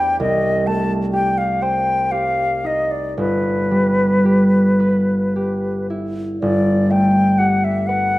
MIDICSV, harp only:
0, 0, Header, 1, 2, 480
1, 0, Start_track
1, 0, Tempo, 927357
1, 102, Time_signature, 6, 3, 24, 8
1, 585, Tempo, 988468
1, 1065, Tempo, 1073345
1, 2985, Tempo, 972447
1, 3862, End_track
2, 0, Start_track
2, 0, Title_t, "Harp"
2, 0, Program_c, 0, 46
2, 0, Note_on_c, 0, 40, 51
2, 0, Note_on_c, 0, 57, 40
2, 0, Note_on_c, 0, 62, 39
2, 0, Note_on_c, 0, 64, 41
2, 0, Note_on_c, 0, 67, 39
2, 0, Note_on_c, 0, 72, 45
2, 102, Note_on_c, 0, 36, 49
2, 117, Note_off_c, 0, 40, 0
2, 121, Note_off_c, 0, 62, 0
2, 121, Note_off_c, 0, 64, 0
2, 339, Note_off_c, 0, 57, 0
2, 345, Note_on_c, 0, 57, 39
2, 581, Note_off_c, 0, 67, 0
2, 587, Note_on_c, 0, 67, 40
2, 818, Note_off_c, 0, 72, 0
2, 824, Note_on_c, 0, 72, 45
2, 1059, Note_off_c, 0, 67, 0
2, 1064, Note_on_c, 0, 67, 37
2, 1298, Note_on_c, 0, 63, 36
2, 1537, Note_on_c, 0, 31, 46
2, 1557, Note_off_c, 0, 36, 0
2, 1557, Note_off_c, 0, 63, 0
2, 1558, Note_off_c, 0, 72, 0
2, 1560, Note_off_c, 0, 57, 0
2, 1777, Note_on_c, 0, 55, 35
2, 2013, Note_off_c, 0, 67, 0
2, 2019, Note_on_c, 0, 67, 35
2, 2264, Note_on_c, 0, 71, 38
2, 2508, Note_off_c, 0, 67, 0
2, 2514, Note_on_c, 0, 67, 36
2, 2756, Note_on_c, 0, 64, 34
2, 2984, Note_off_c, 0, 31, 0
2, 2990, Note_on_c, 0, 31, 47
2, 3004, Note_off_c, 0, 64, 0
2, 3228, Note_on_c, 0, 57, 37
2, 3465, Note_off_c, 0, 67, 0
2, 3471, Note_on_c, 0, 67, 39
2, 3577, Note_off_c, 0, 55, 0
2, 3707, Note_off_c, 0, 71, 0
2, 3713, Note_on_c, 0, 71, 45
2, 3862, Note_off_c, 0, 31, 0
2, 3862, Note_off_c, 0, 57, 0
2, 3862, Note_off_c, 0, 67, 0
2, 3862, Note_off_c, 0, 71, 0
2, 3862, End_track
0, 0, End_of_file